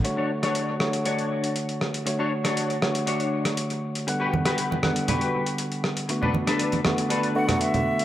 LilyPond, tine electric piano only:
\new Staff \with { instrumentName = "Tine electric piano" } { \time 4/4 \key d \major \tempo 4 = 119 <d a fis' cis''>4. <d a fis' cis''>2~ <d a fis' cis''>8 | <d a fis' cis''>4. <d a fis' cis''>2~ <d a fis' cis''>8 | <d g b fis''>4. <d g b fis''>2~ <d g b fis''>8 | <d a b fis'>4. <d a b fis'>4 <d a b fis'>16 <d a b fis'>4~ <d a b fis'>16 | }